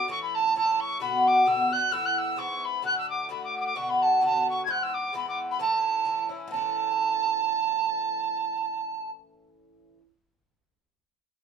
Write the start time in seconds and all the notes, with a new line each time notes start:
0.08 A2 E3 C#4 E4 C#6
0.22 B5
0.34 A5
0.54 A2 E3 C#4 E4 A5
0.80 C#6
1.00 B2 D3 B3 F#4 B5
1.27 D6
1.46 B2 D3 B3 F#4 E6
1.70 D3 B3 F#4 F#6
1.92 A2 E3 B3 E4 E6
2.05 F#6
2.18 E6
2.36 G#2 E3 B3 E4 C#6
2.64 B5
2.82 A2 D3 A3 F#4 F#6
2.98 E6
3.09 D6
3.29 A2 D3 A3 F#4 B5
3.44 D6
3.57 D6
3.66 D6
3.75 B2 D3 B3 F#4 C#6
3.89 B5
4.02 A5
4.21 B2 D3 B3 F#4 A5
4.49 C#6
4.64 G#2 E3 B3 G#6
4.69 E4 F#6
4.83 E6
4.94 D6
5.13 G#2 E3 B3 E4 B5
5.28 D6
5.51 B5
5.59 A2 E3 C#4 E4 A5
6.05 A2 E3 C#4 E4
6.29 E3 C#4 E4
6.48 A2 E3 A5
6.54 C#4 E4